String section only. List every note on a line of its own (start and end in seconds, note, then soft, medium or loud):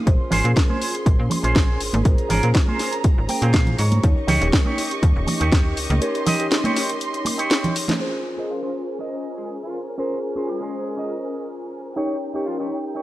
0.07 4.00 C#4 medium
0.07 4.00 G#4 medium
0.07 2.03 C6 medium
2.05 4.02 A#5 medium
4.03 7.96 G4 medium
4.03 7.96 D#5 medium
4.03 6.00 C#6 medium
6.02 7.98 C6 medium
8.00 11.93 C#4 medium
8.00 11.93 A#4 medium
8.00 9.97 C5 medium
8.00 11.93 G#5 medium
11.97 13.02 D#4 medium
11.97 13.02 G5 medium